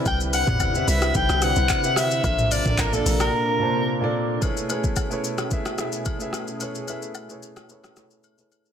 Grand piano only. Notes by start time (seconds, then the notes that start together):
Already playing: C3 C4 E4 B4 D5
0.46 C3 C4 E4 B4 D5
0.73 C3 C4 E4 B4 E5
1.41 C3 C4 E4 B4 D5
1.82 C3 C4 E4 B4 E5
2.23 A#2 A#3 D4 A4 C5
2.64 A#2 A#3 D4 A4 D5
2.92 A#2 A#3 D4 A4 D5
3.59 A#2 A#3 D4 C5 A5
4.00 A#2 A#3 D4 A4 D5
4.41 A3 E4 G#4 B4 C#5
4.68 A3 E4 G#4 B4 C#5
5.09 A3 E4 G#4 B4 C#5
5.50 A3 E4 G#4 B4 E5
5.77 A3 E4 G#4 B4 E5
6.19 A3 E4 G#4 B4 E5
6.59 A3 E4 G#4 B4 C#5
6.86 A3 E4 G#4 B4 E5
7.28 A3 E4 G#4 B4 C#5
7.68 A3 E4 G#4 B4 C#5
7.95 A3 E4 G#4 B4 C#5
8.37 A3 E4 G#4 B4 C#5